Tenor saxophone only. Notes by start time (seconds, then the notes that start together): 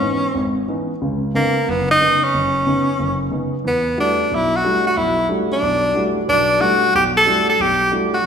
Already playing: C#4
1.36 A#3
1.69 B3
1.91 D#4
2.24 C#4
3.67 B3
4.00 D4
4.35 E4
4.56 F#4
4.87 F#4
4.97 E4
5.52 D4
6.29 D4
6.61 F#4
6.95 G4
7.17 A4
7.49 A4
7.61 G4
8.14 F#4